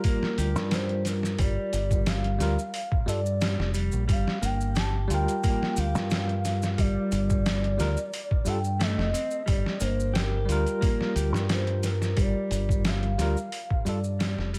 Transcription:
Already playing: G3 F4 A#4
0.04 A#3 A#4, kick, open hi-hat, maracas
0.23 snare
0.38 D2 G4, open hi-hat, maracas
0.56 G2, snare, maracas
0.71 C5, snare, open hi-hat, maracas
0.89 closed hi-hat
1.05 A#4, snare, open hi-hat, maracas
1.23 snare, maracas
1.39 G1 G3 D5, kick, open hi-hat, maracas
1.73 G1, open hi-hat, maracas
1.91 kick, maracas
2.06 F5, snare, open hi-hat, maracas
2.24 closed hi-hat
2.39 D2 G3 F4 A#4, snare, open hi-hat, maracas
2.59 maracas
2.74 open hi-hat, maracas
2.92 kick
3.06 G2 G3 F4 A4 D5, open hi-hat, maracas
3.26 maracas
3.41 G3, snare, open hi-hat, maracas
3.59 F1, snare
3.74 G3, open hi-hat, maracas
3.92 A#1, maracas
4.08 G1 G3 F5, kick, open hi-hat, maracas
4.27 snare
4.42 G1 A#3 G5, open hi-hat, maracas
4.61 maracas
4.75 G4 A5, snare, open hi-hat, maracas
5.08 D2 G3 F4 G5, open hi-hat, maracas
5.14 A#4
5.28 closed hi-hat, maracas
5.43 A#3, kick, open hi-hat, maracas
5.63 snare
5.77 D2 G4 F5, open hi-hat, maracas
5.95 G2, snare, maracas
6.10 snare, open hi-hat, maracas
6.29 closed hi-hat
6.45 snare, open hi-hat, maracas
6.62 snare, maracas
6.78 G1 G3 D5, kick, open hi-hat, maracas
7.12 G1, open hi-hat, maracas
7.30 kick, maracas
7.46 snare, open hi-hat, maracas
7.64 closed hi-hat
7.78 D2 G3 F4 A#4, snare, open hi-hat, maracas
7.97 maracas
8.13 open hi-hat, maracas
8.31 kick
8.45 G2 G3 F4 A4 G5, open hi-hat, maracas
8.64 maracas
8.79 A3 D#5, snare, open hi-hat, maracas
8.98 F1, snare
9.13 C4, open hi-hat, maracas
9.31 maracas
9.46 G1 G3 D5, kick, open hi-hat, maracas
9.66 snare
9.80 G1 A#3 C5, open hi-hat, maracas
10.00 maracas
10.14 G4 A#4, snare, open hi-hat, maracas
10.45 D2 G3 F4, open hi-hat
10.50 A#4, maracas
10.66 closed hi-hat, maracas
10.81 A#3, kick, open hi-hat, maracas
10.85 A#4
11.01 snare
11.15 D2 G4, open hi-hat, maracas
11.33 G2, snare, maracas
11.49 C5, snare, open hi-hat, maracas
11.67 closed hi-hat
11.83 A#4, snare, open hi-hat, maracas
12.02 snare, maracas
12.16 G1 G3 D5, kick, open hi-hat, maracas
12.51 G1, open hi-hat, maracas
12.69 kick, maracas
12.85 F5, snare, open hi-hat, maracas
13.03 closed hi-hat
13.18 D2 G3 F4 A#4, snare, open hi-hat, maracas
13.37 maracas
13.52 open hi-hat, maracas
13.70 kick
13.85 G2 G3 F4 A4 D5, open hi-hat, maracas
14.04 maracas
14.19 G3, snare, open hi-hat, maracas
14.38 F1, snare
14.54 G3, open hi-hat, maracas

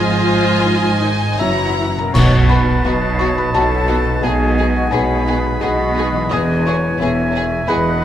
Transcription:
Already playing: G#1 G#2 F3 G#3 D#4 F4 G#4 C5 D#5 G#5
0.28 G#3
0.66 D#4 C5
1.01 D#3 D#4 G#4
1.38 F#1 F#2 E3 E4 F#4 C#5 E5 F#5 A#5
1.77 F#4 C#5
1.96 B2 A#4 A#5
2.00 B3
2.05 F#4 D#5
2.13 B1 B2 F#3 B3 D#4 F#4 C#5 F#5 A5 C#6, concert bass drum, crash
2.48 B3 D#4 F#4 B4 B5
2.84 B1 B2 B3 D#4 F#4 D#5
3.19 B3 D#4 F#4 C#5 C#6
3.36 B4 B5
3.53 B1 B2 B3 D#4 F#4 A4 C#5 D#5 A5
3.88 B3 D#4 F#4 B4
4.05 B2
4.10 B3
4.14 G#4
4.19 B1 G#4 D#5
4.23 B1 B2 G#3 B3 D#4 G#4 D#5 G#5
4.58 B3 D#4 G#4
4.73 F#4 F#5
4.89 B1 B2 B3 D#4 G#4 C#5 G#5 B5
4.94 B3
5.25 B3 D#4 G#4 B4
5.60 B1 B2 B3 D#4 F#4 G#4 D#5 F#5 B5
5.95 B3 D#4 G#4
6.12 E3
6.17 B3
6.22 G#4 B4
6.29 E1 E2 B3 E4 G#4 B4 D#5 G#5 D#6
6.66 B3 E4 G#4 C#5 C#6
6.98 E1 E2 B3 E4 G#4 E5 G#5
7.02 B3
7.32 E4
7.36 B3 G#4
7.66 E1 E2 B3 E4 G#4 B4 D#5 F#5 B5

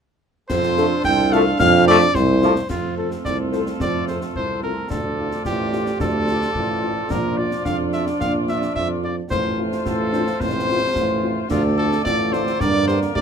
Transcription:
0.49 F2 C4 F4 A4 C5 C6, concert bass drum, snare, crash
0.63 snare
0.77 F3 A3 C4 D4 F4 A4, snare
1.04 C2 G5 G6, concert bass drum, snare
1.32 F3 A3 C4 F4 A4 F5 F6, snare
1.59 F2 F5 F6, concert bass drum, snare
1.87 F3 A3 C4 F4 A4 D5 D6
2.01 snare
2.14 C2 C4 C5 C6, concert bass drum, snare
2.42 F3 A3 C4 F4 A4, snare
2.56 snare
2.70 F2 F3 A3 C4 F4 A4, concert bass drum, snare, crash
2.97 C4 F4 A4
3.11 snare
3.25 C2 D5, concert bass drum, snare
3.52 C4 F4 A4 C5, snare
3.66 snare
3.80 F2 D5, concert bass drum, snare
4.07 C4 F4 A4 C5, snare
4.21 snare
4.35 C2 C5, concert bass drum
4.63 C4 F4 A4 A#4
4.89 D2 F3 A3 D4 F4 A4 D5, concert bass drum, snare
5.18 D4 E4 F4
5.32 snare
5.45 A1 F4 G4, concert bass drum, snare
5.72 D4 F4 G4, snare
5.86 snare
6.00 D2 A4, concert bass drum, snare
6.27 D4 F4, snare
6.42 snare
6.55 A1 F4, concert bass drum
6.82 D4 F4
7.09 A#1 F3 D4 F4 A#4 D5, concert bass drum, snare, crash
7.38 D4 F4 D5
7.51 snare
7.65 F2 D4 F5, concert bass drum, snare
7.93 D4 F4 E5, snare
8.07 snare
8.20 A#1 F5, concert bass drum, snare
8.48 D4 F4 E5, snare
8.62 snare
8.75 F2 E5, concert bass drum
9.03 D4 F4 D5
9.30 A1 F3 A3 F4 C5, concert bass drum, snare
9.57 C4 E4 F4
9.72 snare
9.85 A1 F4 A4, concert bass drum, snare
10.12 C4 D4 F4, snare
10.27 snare
10.40 A1 C4 C5, concert bass drum, snare
10.68 C4 F4
10.95 A1 F4, concert bass drum, snare
11.23 C4 E4 F4
11.49 D2 D3 A3 D4 F4 A4 D5, concert bass drum, snare, crash
11.77 A3 D4 F4 A4
11.92 snare
12.05 A1 F4 D5, concert bass drum, snare
12.32 A3 D4 F4 C5, snare
12.47 snare
12.59 G2 A#3 D4 A#4 D5, concert bass drum, snare
12.88 A#3 D4 G4 C5, snare
13.02 snare
13.15 D2 G4 D5, concert bass drum

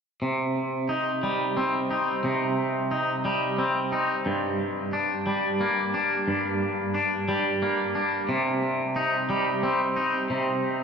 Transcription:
0.22 C3
0.89 D#4
1.23 G3
1.57 C4
1.91 D#4
2.24 C3
2.91 D#4
3.25 G3
3.58 C4
3.92 D#4
4.26 G2
4.93 D4
5.26 G3
5.61 A#3
5.94 D4
6.28 G2
6.94 D4
7.29 G3
7.62 A#3
7.95 D4
8.29 C3
8.96 D#4
9.30 G3
9.63 C4
9.96 D#4
10.30 C3

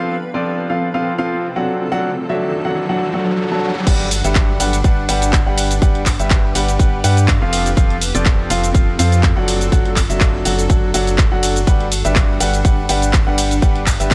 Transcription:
Already playing: F3 C4 D4 F4 G4 A4 B4 F5, riser
0.00 F4
0.20 A4
0.34 F3 C4 F4 A4 D5
0.49 F5
0.70 F3 C4 F4 A4 F5
0.94 F3 C4 F4 A4 F5
1.18 F3 C4 F4 A4 F5
1.56 F#3 D4 F#4 A4 F#5
1.67 F#3
1.87 D4
1.92 F#3 D4 F#4 A4 F#5
2.02 F#5
2.29 F#3 D4 F#4 A4 E5
2.37 F#4
2.65 F#3 D4 F#4 A4 F#5
2.89 F#3 D4 F#4 A4 F#5
3.14 F#3 D4 F#4 A4 F#5
3.51 F#3 D4 F#4 A4 A5
3.87 G1 G3 D4 G4 B4 F#5, kick, closed hi-hat, crash, shaker
4.00 closed hi-hat
4.11 open hi-hat, ride, shaker
4.24 G1 G3 D4 G4 B4 E5, closed hi-hat, shaker
4.35 kick, clap, closed hi-hat, shaker
4.59 G1 G3 D4 G4 B4 F#5, open hi-hat, ride, shaker
4.73 closed hi-hat, shaker
4.84 G1 G3 D4 G4 B4 F#5, kick, closed hi-hat, shaker
5.09 G1 G3 D4 G4 B4 F#5, open hi-hat, ride, shaker
5.22 closed hi-hat, shaker
5.33 kick, clap, closed hi-hat, shaker
5.46 G1 G3 D4 G4 B4 F#5
5.58 open hi-hat, ride, shaker
5.71 closed hi-hat, shaker
5.82 G1 G3 D4 G4 B4 F#5, kick, closed hi-hat, shaker
5.95 closed hi-hat
6.06 kick, clap, open hi-hat, ride, shaker
6.19 G1 G3 D4 G4 B4 E5, closed hi-hat, shaker
6.30 kick, clap, closed hi-hat, shaker
6.55 G1 G3 D4 G4 B4 F#5, open hi-hat, ride, shaker
6.68 closed hi-hat, shaker
6.79 G1 G3 D4 G4 B4 F#5, kick, closed hi-hat, shaker
7.04 G2 G3 D4 G4 B4 F#5, open hi-hat, ride, shaker
7.17 closed hi-hat, shaker
7.28 kick, clap, closed hi-hat, shaker
7.41 F1 F3 C4 F4 A4 F5
7.53 C4, open hi-hat, ride, shaker
7.66 F4, closed hi-hat, shaker
7.77 F1 F3 C4 F4 A4 F5, kick, closed hi-hat, shaker
7.84 A4
7.90 closed hi-hat
8.01 open hi-hat, ride, shaker
8.15 F1 F3 C4 F4 A4 D5, closed hi-hat, shaker
8.26 kick, clap, closed hi-hat, shaker
8.50 F1 F3 C4 F4 A4 F5, open hi-hat, ride, shaker
8.63 closed hi-hat, shaker
8.74 F1 F3 C4 F4 A4 F5, kick, closed hi-hat, shaker
8.99 F2 F3 C4 F4 A4 F5, open hi-hat, ride, shaker
9.12 closed hi-hat, shaker
9.23 kick, clap, closed hi-hat, shaker
9.36 F#1 F#3 D4 F#4 A4 F#5
9.48 D4, open hi-hat, ride, shaker
9.61 F#4, closed hi-hat, shaker
9.72 F#1 F#3 D4 F#4 A4 F#5, kick, closed hi-hat, shaker
9.85 closed hi-hat
9.96 kick, clap, open hi-hat, ride, shaker
10.10 F#1 F#3 D4 F#4 A4 E5, closed hi-hat, shaker
10.21 kick, clap, closed hi-hat, shaker
10.29 F#5
10.45 F#1 F#3 D4 F#4 A4 F#5, open hi-hat, ride, shaker
10.59 closed hi-hat, shaker
10.70 F#1 F#3 D4 F#4 A4 F#5, kick, closed hi-hat, shaker
10.94 F#1 F#3 D4 F#4 A4 F#5, open hi-hat, ride, shaker
11.07 closed hi-hat, shaker
11.18 kick, clap, closed hi-hat, shaker
11.32 F#1 F#3 D4 F#4 A4 F#5
11.43 open hi-hat, ride, shaker
11.56 closed hi-hat, shaker
11.67 G1 G3 D4 G4 B4 F#5, kick, closed hi-hat, shaker
11.80 closed hi-hat
11.92 open hi-hat, ride, shaker
11.99 G4
12.05 G1 G3 D4 G4 B4 E5, closed hi-hat, shaker
12.16 kick, clap, closed hi-hat, shaker
12.39 G1 G3 D4 G4 B4 F#5, open hi-hat, ride, shaker
12.54 closed hi-hat, shaker
12.65 G1 G3 D4 G4 B4 F#5, kick, closed hi-hat, shaker
12.89 G1 G3 D4 G4 B4 F#5, open hi-hat, ride, shaker
13.02 closed hi-hat, shaker
13.13 kick, clap, closed hi-hat, shaker
13.27 G1 G3 D4 G4 B4 F#5
13.38 open hi-hat, ride, shaker
13.51 closed hi-hat, shaker
13.62 G1 G3 D4 G4 B4 F#5, kick, closed hi-hat, shaker
13.76 closed hi-hat
13.86 kick, clap, open hi-hat, ride, shaker
14.00 G1 G3 D4 G4 B4 E5, closed hi-hat, shaker
14.11 kick, clap, closed hi-hat

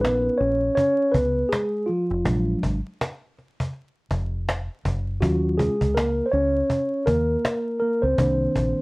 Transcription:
Already playing: A#1 C#4 D#4 A#4
0.01 B3 B4, cajon slap
0.38 A#1 C#4 C#5, cajon slap
0.75 C#4 C#5, cajon bass
1.12 C#2 B3 B4, cajon bass
1.49 G#3 G#4, cajon slap
1.86 F3 F4, cajon slap
2.11 F1
2.25 A#1 F#3 G#3 D4, cajon bass
2.63 G#1, cajon bass
3.01 cajon slap
3.38 cajon slap
3.60 cajon bass
3.73 cajon slap
4.11 F1, cajon bass
4.49 cajon slap
4.85 F#1, cajon bass
5.20 D#2 F#3 C#4 F4 F#4, cajon bass
5.58 G#3 G#4, cajon bass
5.81 C#2, cajon bass
5.95 A#3 A#4, cajon slap
6.26 C5
6.32 C#2 C#4 C#5, cajon slap
6.70 cajon bass
7.06 D#2 A#3 A#4, cajon bass
7.45 cajon slap
7.80 A#3 A#4, cajon slap
8.02 C#2 C4 C5
8.18 C2 D#3 A#3 D4, cajon bass
8.55 A#1, cajon bass

